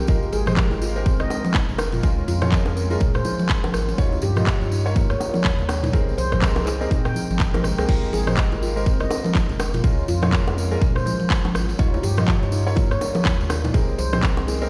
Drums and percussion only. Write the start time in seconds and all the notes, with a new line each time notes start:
0.07 kick, tambourine
0.23 tambourine
0.33 tambourine, low bongo, muted conga
0.46 cross-stick, mid tom, tambourine, high conga, low conga
0.57 kick, clap, tambourine
0.71 tambourine, low bongo, muted conga
0.82 tambourine
0.96 tambourine
1.06 kick, tambourine, muted conga
1.20 cross-stick, tambourine, low bongo
1.30 tambourine, high bongo
1.45 tambourine, high bongo, high conga
1.54 kick, clap, tambourine, low bongo
1.69 tambourine, low conga
1.78 cross-stick, tambourine, high bongo
1.92 mid tom, tambourine, muted conga
2.03 kick, tambourine, low bongo
2.18 tambourine
2.28 tambourine, muted conga
2.42 cross-stick, mid tom, tambourine, low bongo, high conga, low conga
2.52 kick, clap, tambourine
2.66 tambourine, high bongo, muted conga
2.77 tambourine
2.90 tambourine, low bongo
3.00 kick, mid tom, tambourine, muted conga
3.14 cross-stick, mid tom, tambourine
3.25 tambourine, low bongo, high conga
3.39 tambourine, high conga
3.49 kick, clap, tambourine, muted conga
3.64 tambourine, high bongo, high conga
3.74 cross-stick, tambourine, low bongo
3.89 tambourine, muted conga
3.98 kick, tambourine
4.12 tambourine, low bongo
4.22 tambourine, muted conga
4.36 cross-stick, mid tom, tambourine, high conga, low conga
4.47 kick, clap, tambourine
4.61 tambourine, low bongo, muted conga
4.72 tambourine
4.86 tambourine
4.96 kick, tambourine, low bongo, muted conga
5.10 cross-stick, tambourine
5.20 tambourine, high bongo
5.34 tambourine, high bongo, high conga
5.44 kick, clap, tambourine, low bongo
5.59 tambourine, low conga
5.69 cross-stick, tambourine, high bongo
5.83 mid tom, tambourine, low bongo, muted conga
5.93 kick, tambourine
6.09 tambourine
6.18 tambourine, muted conga
6.32 kick, cross-stick, mid tom, tambourine, low bongo, high conga, low conga
6.42 kick, clap, tambourine
6.56 tambourine, high bongo, muted conga
6.66 clap, tambourine, low bongo
6.81 tambourine
6.91 kick, mid tom, tambourine, muted conga
7.05 cross-stick, mid tom, tambourine
7.15 tambourine, low bongo, high conga
7.31 tambourine, high conga
7.40 kick, clap, tambourine
7.54 cross-stick, tambourine, high bongo, low bongo, high conga
7.64 cross-stick, tambourine, low conga
7.78 cross-stick, tambourine, muted conga
7.89 kick, crash, tambourine
8.03 tambourine
8.13 tambourine, low bongo, muted conga
8.27 cross-stick, mid tom, tambourine, high conga, low conga
8.37 kick, clap, tambourine
8.52 tambourine, low bongo, muted conga
8.63 tambourine
8.77 tambourine
8.86 kick, tambourine, muted conga
9.00 cross-stick, tambourine, low bongo
9.11 tambourine, high bongo
9.24 tambourine, high bongo, high conga
9.35 kick, clap, tambourine, low bongo
9.49 tambourine, low conga
9.60 cross-stick, tambourine, high bongo
9.74 mid tom, tambourine, muted conga
9.84 kick, tambourine, low bongo
9.98 tambourine
10.08 tambourine, muted conga
10.22 cross-stick, mid tom, tambourine, low bongo, high conga, low conga
10.33 kick, clap, tambourine
10.47 tambourine, high bongo, muted conga
10.58 tambourine
10.72 tambourine, low bongo
10.81 kick, mid tom, tambourine, muted conga
10.96 cross-stick, mid tom, tambourine
11.06 tambourine, low bongo, high conga
11.20 tambourine, high conga
11.30 kick, clap, tambourine, muted conga
11.45 tambourine, high bongo, high conga
11.55 cross-stick, tambourine, low bongo
11.69 tambourine, muted conga
11.79 kick, tambourine
11.94 tambourine, low bongo
12.03 tambourine, muted conga
12.17 cross-stick, mid tom, tambourine, high conga, low conga
12.28 kick, clap, tambourine
12.42 tambourine, low bongo, muted conga
12.52 tambourine
12.68 tambourine
12.76 kick, tambourine, low bongo, muted conga
12.91 cross-stick, tambourine
13.01 tambourine, high bongo
13.15 tambourine, high bongo, high conga
13.24 kick, clap, tambourine, low bongo
13.40 tambourine, low conga
13.50 cross-stick, tambourine, high bongo
13.64 mid tom, tambourine, low bongo, muted conga
13.74 kick, tambourine
13.89 tambourine
13.98 tambourine, muted conga
14.13 cross-stick, mid tom, tambourine, low bongo, high conga, low conga
14.23 kick, clap, tambourine
14.37 tambourine, high bongo, muted conga
14.48 tambourine, low bongo
14.62 tambourine